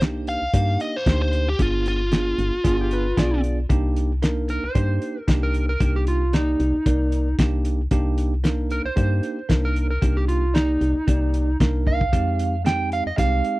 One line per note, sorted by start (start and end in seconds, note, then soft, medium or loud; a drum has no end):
0.00 0.38 C2 medium
0.00 0.42 A#3 medium
0.00 0.42 D4 medium
0.00 0.42 D#4 medium
0.00 0.42 G4 medium
0.00 snare medium
0.00 closed hi-hat medium
0.27 0.79 F5 medium
0.27 closed hi-hat medium
0.42 0.48 C2 soft
0.54 0.77 G2 medium
0.54 0.95 A#3 medium
0.54 0.95 D4 medium
0.54 0.95 D#4 medium
0.54 0.95 G4 medium
0.54 kick medium
0.54 closed hi-hat medium
0.80 0.96 D#5 medium
0.80 closed hi-hat medium
0.96 1.21 C5 medium
1.06 1.55 D2 medium
1.06 1.48 A#3 medium
1.06 1.48 D4 medium
1.06 1.48 D#4 medium
1.06 1.48 G4 medium
1.06 kick medium
1.06 snare loud
1.06 closed hi-hat medium
1.22 1.47 C5 medium
1.33 closed hi-hat medium
1.49 1.60 G4 medium
1.59 2.34 G1 loud
1.59 2.00 B3 medium
1.59 2.01 D4 medium
1.59 2.00 F4 medium
1.59 1.86 F4 medium
1.59 2.01 G#4 medium
1.59 kick loud
1.59 closed hi-hat medium
1.86 3.41 F4 medium
1.86 closed hi-hat medium
2.12 2.53 B3 medium
2.12 2.53 D4 medium
2.12 2.53 F4 medium
2.12 2.53 G#4 medium
2.12 snare medium
2.12 closed hi-hat medium
2.38 2.51 G1 medium
2.38 closed hi-hat medium
2.64 3.13 G1 medium
2.64 3.06 B3 medium
2.64 3.06 D4 medium
2.64 3.06 F4 medium
2.64 2.79 F4 medium
2.64 3.06 G#4 medium
2.64 kick medium
2.64 closed hi-hat medium
2.81 2.92 G4 medium
2.91 3.17 B4 medium
2.91 closed hi-hat medium
3.17 3.66 B1 medium
3.17 3.59 B3 medium
3.17 3.59 D4 medium
3.17 3.59 F4 medium
3.17 3.59 G#4 medium
3.17 3.58 D5 medium
3.17 kick medium
3.17 snare loud
3.17 closed hi-hat medium
3.44 closed hi-hat medium
3.69 4.59 C2 medium
3.69 4.11 A#3 medium
3.69 4.11 D4 medium
3.69 4.11 D#4 medium
3.69 4.11 G4 loud
3.69 kick loud
3.69 closed hi-hat medium
3.96 closed hi-hat medium
4.22 4.64 A#3 medium
4.22 4.64 D4 medium
4.22 4.64 D#4 medium
4.22 4.64 A#4 medium
4.22 snare medium
4.22 closed hi-hat medium
4.49 4.63 A#4 medium
4.49 closed hi-hat medium
4.63 4.69 C2 soft
4.63 5.20 C5 medium
4.75 4.99 G2 loud
4.75 5.17 A#3 medium
4.75 5.17 D4 medium
4.75 5.17 D#4 medium
4.75 5.17 G4 medium
4.75 kick medium
4.75 closed hi-hat medium
5.02 closed hi-hat medium
5.20 5.40 A#4 medium
5.28 5.77 C2 medium
5.28 5.69 A#3 medium
5.28 5.69 D4 medium
5.28 5.69 D#4 medium
5.28 5.70 G4 medium
5.28 kick medium
5.28 snare loud
5.28 closed hi-hat medium
5.43 5.68 A#4 medium
5.54 closed hi-hat medium
5.69 5.95 A#4 medium
5.80 6.56 C2 loud
5.80 6.22 A#3 medium
5.80 6.22 D4 medium
5.80 6.22 D#4 medium
5.80 6.22 G4 medium
5.80 kick loud
5.80 closed hi-hat medium
5.96 6.07 G4 medium
6.07 6.33 F4 medium
6.07 closed hi-hat medium
6.33 6.75 A#3 medium
6.33 6.75 D#4 medium
6.33 7.36 D#4 medium
6.33 6.75 G4 medium
6.33 6.75 D5 medium
6.33 snare medium
6.33 closed hi-hat medium
6.60 6.73 C2 medium
6.60 closed hi-hat medium
6.86 7.35 C2 medium
6.86 7.27 A#3 medium
6.86 7.28 D#4 medium
6.86 7.28 A#4 medium
6.86 7.28 D5 medium
6.86 kick medium
6.86 closed hi-hat medium
7.12 closed hi-hat medium
7.39 7.87 C2 medium
7.39 7.80 A#3 medium
7.39 7.80 D4 medium
7.39 7.80 D#4 medium
7.39 7.80 G4 medium
7.39 kick medium
7.39 snare loud
7.39 closed hi-hat medium
7.65 closed hi-hat medium
7.91 8.81 C2 loud
7.91 8.33 A#3 medium
7.91 8.33 D4 medium
7.91 8.33 D#4 medium
7.91 8.33 G4 loud
7.91 kick medium
7.91 closed hi-hat medium
8.18 closed hi-hat medium
8.44 8.85 A#3 medium
8.44 8.85 D4 medium
8.44 8.86 D#4 medium
8.44 8.85 A#4 medium
8.44 snare medium
8.44 closed hi-hat medium
8.70 8.85 A#4 medium
8.70 closed hi-hat medium
8.85 8.91 C2 soft
8.85 9.62 C5 medium
8.96 9.21 G2 medium
8.96 9.38 A#3 medium
8.96 9.38 D4 medium
8.96 9.38 D#4 medium
8.96 9.38 G4 medium
8.96 kick medium
8.96 closed hi-hat medium
9.23 closed hi-hat medium
9.49 9.98 C2 medium
9.49 9.91 A#3 medium
9.49 9.91 D4 medium
9.49 9.91 D#4 medium
9.49 9.91 A#4 medium
9.49 kick medium
9.49 snare loud
9.49 closed hi-hat medium
9.65 9.89 A#4 medium
9.76 closed hi-hat medium
9.91 10.16 A#4 medium
10.02 10.77 C2 loud
10.02 10.43 A#3 medium
10.02 10.43 D4 medium
10.02 10.43 D#4 medium
10.02 10.43 G4 medium
10.02 kick medium
10.02 closed hi-hat medium
10.17 10.28 G4 medium
10.28 10.54 F4 medium
10.28 closed hi-hat medium
10.54 10.96 A#3 medium
10.54 10.96 D#4 medium
10.54 11.57 D#4 medium
10.54 10.96 G4 medium
10.54 10.96 D5 medium
10.54 snare medium
10.54 closed hi-hat medium
10.81 10.94 C2 medium
10.81 closed hi-hat medium
11.07 11.56 C2 loud
11.07 11.49 A#3 medium
11.07 11.49 D#4 medium
11.07 11.49 G4 medium
11.07 11.49 D5 medium
11.07 kick medium
11.07 closed hi-hat medium
11.34 closed hi-hat medium
11.60 12.14 C2 medium
11.60 12.02 A#3 medium
11.60 12.02 D4 medium
11.60 12.02 D#4 medium
11.60 12.02 A#4 medium
11.60 kick medium
11.60 snare loud
11.60 closed hi-hat medium
11.87 12.64 F5 medium
11.87 kick medium
12.01 kick medium
12.12 13.02 F2 loud
12.12 12.54 G#3 medium
12.12 12.54 C4 medium
12.12 12.54 D#4 medium
12.12 12.54 G4 medium
12.12 kick loud
12.12 closed hi-hat medium
12.39 closed hi-hat medium
12.65 13.07 G#3 medium
12.65 13.07 C4 medium
12.65 13.07 D#4 medium
12.65 13.07 G4 medium
12.65 12.91 G5 medium
12.65 snare medium
12.65 closed hi-hat medium
12.92 13.06 F5 medium
12.92 closed hi-hat medium
13.06 13.12 F2 soft
13.06 13.18 D#5 medium
13.17 13.42 C2 medium
13.17 13.59 G#3 medium
13.17 13.59 C4 medium
13.17 13.59 D#4 medium
13.17 13.59 G4 medium
13.17 13.60 F5 medium
13.17 kick medium
13.17 closed hi-hat medium
13.44 closed hi-hat medium